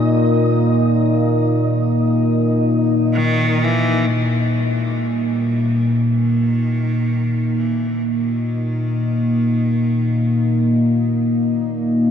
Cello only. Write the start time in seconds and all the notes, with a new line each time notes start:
3.14 D#3
3.65 E3
4.13 E3
4.61 G#3
5.10 G3
6.12 D#3
7.59 E3
8.08 D#3